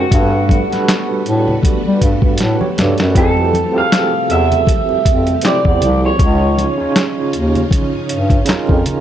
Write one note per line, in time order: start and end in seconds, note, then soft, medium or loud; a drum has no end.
0.00 0.14 G#3 medium
0.00 0.14 D#4 medium
0.00 1.07 F#4 medium
0.00 0.14 A#4 medium
0.00 0.14 C5 medium
0.00 0.14 G5 medium
0.10 0.60 G2 loud
0.10 0.66 G3 medium
0.10 6.15 G3 medium
0.10 6.15 A3 medium
0.10 3.13 B3 medium
0.10 0.66 D4 medium
0.10 3.13 F#4 medium
0.10 0.67 F#4 medium
0.10 0.67 A4 medium
0.10 kick loud
0.10 closed hi-hat medium
0.10 muted conga soft
0.14 0.68 B4 medium
0.49 kick medium
0.49 closed hi-hat soft
0.49 high conga medium
0.69 0.79 A2 soft
0.69 2.10 G3 medium
0.69 2.11 D4 medium
0.69 2.02 F#4 medium
0.69 2.02 A4 medium
0.69 2.03 B4 medium
0.69 closed hi-hat soft
0.73 snare soft
0.88 snare loud
0.88 clap medium
0.88 closed hi-hat medium
0.88 muted conga soft
1.26 1.57 A2 loud
1.26 closed hi-hat medium
1.48 low conga medium
1.63 kick medium
1.63 closed hi-hat medium
1.63 high conga medium
1.85 1.99 G3 medium
1.85 muted conga soft
2.01 2.19 G2 medium
2.01 kick medium
2.01 closed hi-hat medium
2.22 2.36 G2 medium
2.22 kick medium
2.38 2.57 A2 medium
2.38 2.60 F#4 soft
2.38 2.60 B4 medium
2.38 snare medium
2.38 closed hi-hat medium
2.61 2.77 G4 medium
2.61 2.77 C#5 medium
2.61 high conga medium
2.78 2.95 G2 medium
2.78 2.98 A4 medium
2.78 2.98 D5 medium
2.78 snare medium
2.78 closed hi-hat medium
2.78 low conga medium
2.98 3.13 F#2 medium
2.98 3.36 F#4 medium
2.98 3.36 B4 medium
2.98 snare medium
2.98 closed hi-hat soft
3.15 3.63 F2 loud
3.15 6.17 C3 medium
3.15 3.70 F3 medium
3.15 3.70 C4 medium
3.15 3.71 E4 medium
3.15 6.17 G4 medium
3.15 3.71 G4 medium
3.15 3.78 A4 loud
3.15 3.72 A4 medium
3.15 kick loud
3.15 closed hi-hat medium
3.15 muted conga soft
3.37 muted conga soft
3.54 closed hi-hat soft
3.54 high conga medium
3.73 3.83 E2 soft
3.73 5.15 C4 medium
3.73 5.14 F4 medium
3.73 5.16 G4 medium
3.78 3.82 G#4 medium
3.78 4.31 F5 loud
3.84 5.20 A4 medium
3.92 snare loud
3.92 clap medium
3.92 closed hi-hat medium
3.92 muted conga soft
4.30 4.61 E2 medium
4.30 5.46 E5 loud
4.30 closed hi-hat medium
4.52 closed hi-hat soft
4.52 low conga medium
4.67 kick medium
4.67 closed hi-hat medium
4.67 muted conga soft
4.67 high conga medium
4.89 4.97 F2 soft
4.89 muted conga soft
5.06 5.36 F2 medium
5.06 kick medium
5.06 closed hi-hat medium
5.27 closed hi-hat soft
5.41 6.14 F3 medium
5.41 6.15 C4 medium
5.41 6.15 E4 medium
5.41 6.16 G4 medium
5.41 snare medium
5.41 closed hi-hat medium
5.46 6.16 C5 medium
5.46 6.00 D5 medium
5.46 clap medium
5.65 5.79 E2 medium
5.65 kick medium
5.65 high conga medium
5.82 6.13 C2 medium
5.82 closed hi-hat medium
5.82 low conga medium
6.06 7.52 C#5 medium
6.18 6.67 C#2 loud
6.18 6.74 C#3 medium
6.18 9.01 C#3 medium
6.18 6.74 C#4 medium
6.18 9.01 C#4 medium
6.18 6.75 D#4 medium
6.18 9.01 D#4 medium
6.18 9.01 F4 medium
6.18 6.75 F4 medium
6.18 6.76 C#5 medium
6.18 kick loud
6.18 closed hi-hat medium
6.18 muted conga soft
6.57 closed hi-hat soft
6.57 high conga medium
6.77 6.87 D#2 soft
6.77 8.18 C#3 medium
6.77 8.18 C#4 medium
6.77 8.19 D#4 medium
6.77 8.20 F4 medium
6.77 8.20 C#5 medium
6.96 snare loud
6.96 clap medium
6.96 closed hi-hat medium
7.33 7.65 D#2 loud
7.33 closed hi-hat soft
7.55 closed hi-hat soft
7.55 low conga medium
7.70 kick medium
7.70 closed hi-hat medium
7.70 high conga medium
7.94 8.00 G2 soft
8.09 8.41 G2 loud
8.09 closed hi-hat medium
8.30 kick loud
8.30 closed hi-hat soft
8.46 8.57 F2 soft
8.46 9.01 C#3 medium
8.46 9.01 C#4 medium
8.46 9.01 D#4 medium
8.46 9.01 F4 medium
8.46 snare medium
8.46 closed hi-hat medium
8.50 9.01 A#4 medium
8.50 clap medium
8.69 8.83 F2 medium
8.69 kick medium
8.69 high conga medium
8.86 closed hi-hat medium
8.86 low conga medium